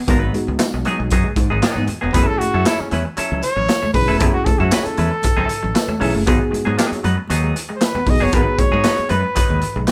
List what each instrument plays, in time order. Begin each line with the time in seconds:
0.07 fingered electric bass G#1, clean electric guitar F#3 B3 D#4 B4, tine electric piano G#3 B3 D#4 F#4, kick, closed hi-hat, low conga
0.22 muted conga
0.33 tine electric piano G#3 B3 D#4 F#4, clean electric guitar G#3, closed hi-hat, high conga
0.47 fingered electric bass C#2, muted clean electric guitar stroke, high conga
0.59 snare, clap, closed hi-hat, tambourine, muted conga
0.74 fingered electric bass B1, muted clean electric guitar stroke, muted conga
0.85 clean electric guitar F#3 B3 D#4 G#4, closed hi-hat, high conga
1.00 fingered electric bass B1, muted clean electric guitar stroke
1.10 fingered electric bass F#2, clean electric guitar F#3 B3 D#4 G#4, kick, closed hi-hat, muted conga
1.24 clean electric guitar G#3
1.36 fingered electric bass G#2, muted clean electric guitar stroke, kick, closed hi-hat
1.50 fingered electric bass G#1, clean electric guitar F#3 G#3 B3 D#4 G#4
1.62 clean electric guitar F#3 B3 D#4 G#4, snare, clap, closed hi-hat, tambourine, muted conga
1.75 fingered electric bass G#2, clean electric guitar B3, muted conga, high conga, low conga
1.88 muted clean electric guitar stroke, closed hi-hat, low conga
2.01 fingered electric bass E1, clean electric guitar F#3 B3 D#4 G#4
2.13 fingered electric bass F#1, clean electric guitar F#3 B3 C#4 E4 A4, tine electric piano G#3 C#4 E4 G#4, trumpet B4, kick, closed hi-hat, muted conga, low conga
2.20 tine electric piano A3
2.27 trumpet A4, muted clean electric guitar stroke, muted conga
2.38 clean electric guitar A3, trumpet F#4, muted clean electric guitar stroke, muted fingered electric bass stroke, closed hi-hat
2.54 fingered electric bass F#2, clean electric guitar F#3 C#4 E4 A4, muted clean electric guitar stroke, high conga
2.65 clean electric guitar F#3 C#4 E4 A4, trumpet E4, snare, clap, closed hi-hat, tambourine, muted conga
2.79 trumpet C#4, muted clean electric guitar stroke, muted fingered electric bass stroke
2.91 fingered electric bass E2, clean electric guitar E3 F#3 C#4 E4 B4, trumpet C#4, closed hi-hat, high conga
3.05 muted clean electric guitar stroke
3.17 clean electric guitar F#3 C#4 E4 A4, muted fingered electric bass stroke, closed hi-hat
3.31 fingered electric bass C#2, clean electric guitar F#3, muted conga
3.43 trumpet C#5, muted clean electric guitar stroke, closed hi-hat
3.56 fingered electric bass A1, clean electric guitar F#3, muted clean electric guitar stroke
3.69 muted clean electric guitar stroke, snare, clap, closed hi-hat, tambourine
3.82 clean electric guitar A3, muted clean electric guitar stroke, muted conga, high conga, low conga
3.93 fingered electric bass B1, tine electric piano A3 C#4 E4 G#4, trumpet B4, muted clean electric guitar stroke, kick, open hi-hat, low conga
4.08 fingered electric bass E1, clean electric guitar F#3 A3 C#4 E4 A4
4.19 fingered electric bass F#1, clean electric guitar F#3 B3 C#4 E4 B4, tine electric piano A3 C#4 E4 G#4, trumpet A4, kick, closed hi-hat, muted conga, low conga
4.33 trumpet F#4, muted clean electric guitar stroke, muted conga
4.45 clean electric guitar A3, trumpet A4, muted clean electric guitar stroke, muted fingered electric bass stroke, kick, closed hi-hat
4.59 fingered electric bass F#2, clean electric guitar F#3 C#4 E4 A4, trumpet F#4, muted clean electric guitar stroke, high conga
4.71 clean electric guitar F#3 C#4 E4 B4, snare, clap, closed hi-hat, tambourine, muted conga
4.84 trumpet A4, muted clean electric guitar stroke, muted fingered electric bass stroke, closed hi-hat
4.97 fingered electric bass E2, clean electric guitar E3 F#3 C#4 E4 B4, closed hi-hat, high conga
5.12 muted clean electric guitar stroke
5.22 muted clean electric guitar stroke, muted fingered electric bass stroke, kick, closed hi-hat, muted conga
5.37 fingered electric bass C#2, clean electric guitar F#3 C#4 E4 A4, muted conga
5.49 tine electric piano A4, muted clean electric guitar stroke, closed hi-hat
5.63 fingered electric bass A1, clean electric guitar F#3, muted clean electric guitar stroke
5.75 tine electric piano B4, muted clean electric guitar stroke, snare, clap, closed hi-hat, tambourine, muted conga
5.88 clean electric guitar A3, tine electric piano C#5, muted clean electric guitar stroke, muted conga, high conga, low conga
6.00 fingered electric bass B1, clean electric guitar F#3 C#4 E4 A4, tine electric piano A3 C#4 E4 G#4, muted clean electric guitar stroke, open hi-hat, low conga
6.14 fingered electric bass F#1, clean electric guitar A3, muted clean electric guitar stroke
6.26 fingered electric bass G#1, clean electric guitar F#3 B3 D#4 G#4, tine electric piano B3 D#4 F#4 G#4, kick, closed hi-hat, muted conga, low conga
6.40 muted clean electric guitar stroke, muted conga
6.51 clean electric guitar G#3, muted clean electric guitar stroke, muted fingered electric bass stroke, closed hi-hat
6.65 fingered electric bass G#2, clean electric guitar F#3 B3 D#4 G#4, muted clean electric guitar stroke, high conga
6.77 clean electric guitar F#3 B3 D#4 G#4, snare, clap, closed hi-hat, tambourine
6.91 muted clean electric guitar stroke, muted fingered electric bass stroke, closed hi-hat, muted conga
7.03 fingered electric bass F#2, clean electric guitar F#3 B3 D#4 B4, closed hi-hat, high conga
7.18 muted clean electric guitar stroke
7.28 fingered electric bass D#2, clean electric guitar F#3 B3 D#4 G#4, closed hi-hat, muted conga
7.44 clean electric guitar G#3
7.56 muted clean electric guitar stroke, closed hi-hat
7.69 clean electric guitar G#3, muted clean electric guitar stroke
7.76 trumpet C5
7.81 trumpet B4, muted clean electric guitar stroke, snare, clap, closed hi-hat, tambourine
7.95 clean electric guitar B3, muted clean electric guitar stroke, high conga, low conga
8.06 fingered electric bass B1, tine electric piano B3 D#4 F#4 G#4, trumpet D#5, muted clean electric guitar stroke, kick, open hi-hat, low conga
8.20 fingered electric bass F#1, clean electric guitar F#3 B3 D#4 G#4, trumpet C#5
8.32 fingered electric bass G#1, clean electric guitar F#3 B3 D#4 B4, tine electric piano B3 D#4 F#4 G#4, trumpet B4, kick, closed hi-hat, muted conga, low conga
8.46 muted clean electric guitar stroke, muted conga
8.58 clean electric guitar G#3, trumpet C#5, muted clean electric guitar stroke, muted fingered electric bass stroke, kick, closed hi-hat
8.72 fingered electric bass G#2, clean electric guitar F#3 B3 D#4 G#4, muted clean electric guitar stroke, high conga
8.84 clean electric guitar F#3 B3 D#4 B4, snare, clap, closed hi-hat, tambourine, muted conga
8.97 muted clean electric guitar stroke, muted fingered electric bass stroke, closed hi-hat, muted conga
9.09 fingered electric bass F#2, clean electric guitar F#3 B3 D#4 B4, trumpet B4, closed hi-hat, high conga
9.23 muted clean electric guitar stroke
9.35 clean electric guitar F#3 B3 D#4 B4, muted fingered electric bass stroke, kick, closed hi-hat
9.50 fingered electric bass D#2, clean electric guitar G#3, muted conga
9.62 muted clean electric guitar stroke, closed hi-hat
9.76 fingered electric bass B1, clean electric guitar G#3, muted clean electric guitar stroke
9.88 snare, clap, closed hi-hat, tambourine, muted conga